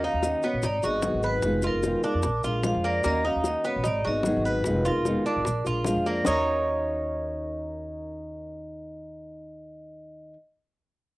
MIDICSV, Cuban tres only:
0, 0, Header, 1, 2, 480
1, 0, Start_track
1, 0, Key_signature, -6, "minor"
1, 0, Tempo, 401875
1, 1719, Time_signature, 4, 2, 24, 8
1, 13341, End_track
2, 0, Start_track
2, 0, Title_t, "Cuban tres"
2, 0, Program_c, 0, 25
2, 47, Note_on_c, 0, 63, 77
2, 509, Note_off_c, 0, 63, 0
2, 521, Note_on_c, 0, 59, 82
2, 753, Note_off_c, 0, 59, 0
2, 763, Note_on_c, 0, 63, 76
2, 994, Note_off_c, 0, 63, 0
2, 999, Note_on_c, 0, 66, 82
2, 1464, Note_off_c, 0, 66, 0
2, 1477, Note_on_c, 0, 71, 75
2, 1944, Note_off_c, 0, 71, 0
2, 1957, Note_on_c, 0, 65, 76
2, 2424, Note_off_c, 0, 65, 0
2, 2433, Note_on_c, 0, 62, 81
2, 2902, Note_off_c, 0, 62, 0
2, 2915, Note_on_c, 0, 65, 81
2, 3383, Note_off_c, 0, 65, 0
2, 3394, Note_on_c, 0, 58, 89
2, 3616, Note_off_c, 0, 58, 0
2, 3630, Note_on_c, 0, 58, 85
2, 3867, Note_off_c, 0, 58, 0
2, 3877, Note_on_c, 0, 63, 82
2, 4344, Note_off_c, 0, 63, 0
2, 4355, Note_on_c, 0, 59, 85
2, 4586, Note_on_c, 0, 63, 70
2, 4590, Note_off_c, 0, 59, 0
2, 4825, Note_off_c, 0, 63, 0
2, 4832, Note_on_c, 0, 66, 80
2, 5301, Note_off_c, 0, 66, 0
2, 5318, Note_on_c, 0, 71, 76
2, 5785, Note_off_c, 0, 71, 0
2, 5794, Note_on_c, 0, 65, 83
2, 6262, Note_off_c, 0, 65, 0
2, 6281, Note_on_c, 0, 62, 81
2, 6746, Note_off_c, 0, 62, 0
2, 6767, Note_on_c, 0, 65, 74
2, 7230, Note_off_c, 0, 65, 0
2, 7242, Note_on_c, 0, 58, 85
2, 7473, Note_off_c, 0, 58, 0
2, 7478, Note_on_c, 0, 63, 89
2, 7488, Note_on_c, 0, 70, 74
2, 7489, Note_on_c, 0, 73, 101
2, 12335, Note_off_c, 0, 63, 0
2, 12340, Note_off_c, 0, 70, 0
2, 12345, Note_off_c, 0, 73, 0
2, 13341, End_track
0, 0, End_of_file